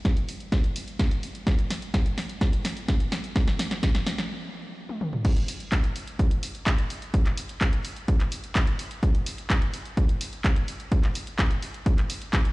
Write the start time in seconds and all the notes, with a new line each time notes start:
0.05 kick, snare, closed hi-hat
0.17 closed hi-hat
0.29 open hi-hat
0.40 closed hi-hat
0.52 kick, snare, closed hi-hat
0.64 closed hi-hat
0.76 open hi-hat
0.88 closed hi-hat
0.99 kick, snare, closed hi-hat
1.11 closed hi-hat
1.23 open hi-hat
1.35 closed hi-hat
1.47 kick, snare, closed hi-hat
1.59 closed hi-hat
1.70 snare, open hi-hat
1.82 closed hi-hat
1.94 kick, snare, closed hi-hat
2.06 closed hi-hat
2.18 snare, open hi-hat
2.30 closed hi-hat
2.41 kick, snare, closed hi-hat
2.53 closed hi-hat
2.65 snare, open hi-hat
2.77 closed hi-hat
2.88 kick, snare, closed hi-hat
3.00 closed hi-hat
3.12 snare, open hi-hat
3.24 closed hi-hat
3.36 kick, snare, closed hi-hat
3.48 snare, closed hi-hat
3.59 snare, open hi-hat
3.71 snare, closed hi-hat
3.83 kick, snare, closed hi-hat
3.95 snare, closed hi-hat
4.07 snare, open hi-hat
4.18 snare, closed hi-hat
4.89 high tom
5.01 mid tom
5.13 mid tom
5.25 kick, closed hi-hat, crash
5.37 closed hi-hat
5.48 open hi-hat
5.60 closed hi-hat
5.72 kick, clap, closed hi-hat
5.84 closed hi-hat
5.96 open hi-hat
6.07 closed hi-hat
6.19 kick, closed hi-hat
6.31 closed hi-hat
6.43 open hi-hat
6.55 closed hi-hat
6.67 kick, clap, closed hi-hat
6.78 closed hi-hat
6.90 open hi-hat
7.02 closed hi-hat
7.14 kick, closed hi-hat
7.26 clap, closed hi-hat
7.37 open hi-hat
7.49 closed hi-hat
7.61 kick, clap, closed hi-hat
7.73 closed hi-hat
7.85 open hi-hat
7.96 closed hi-hat
8.08 kick, closed hi-hat
8.20 clap, closed hi-hat
8.32 open hi-hat
8.44 closed hi-hat
8.55 kick, clap, closed hi-hat
8.67 closed hi-hat
8.79 open hi-hat
8.91 closed hi-hat
9.03 kick, closed hi-hat
9.15 closed hi-hat
9.26 open hi-hat
9.38 closed hi-hat
9.50 kick, clap, closed hi-hat
9.62 closed hi-hat
9.74 open hi-hat
9.86 closed hi-hat
9.97 kick, closed hi-hat
10.09 closed hi-hat
10.21 open hi-hat
10.33 closed hi-hat
10.44 kick, clap, closed hi-hat
10.56 closed hi-hat
10.68 open hi-hat
10.80 closed hi-hat
10.92 kick, closed hi-hat
11.04 clap, closed hi-hat
11.15 open hi-hat
11.27 closed hi-hat
11.39 kick, clap, closed hi-hat
11.51 closed hi-hat
11.62 open hi-hat
11.74 closed hi-hat
11.86 kick, closed hi-hat
11.98 clap, closed hi-hat
12.10 open hi-hat
12.22 closed hi-hat
12.33 kick, clap, closed hi-hat
12.45 closed hi-hat